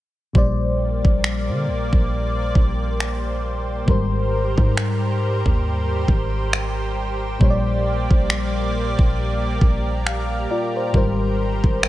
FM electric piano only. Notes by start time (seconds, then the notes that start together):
0.33 A#2 G3 C5
0.38 D5
3.86 G#2 G3 A#4
3.91 C5
7.39 A#2 G3 C5
7.44 C#5
7.50 D5
10.07 F5
10.51 F4 D5
10.76 C5
10.92 G#2 G3 A#4
10.97 C5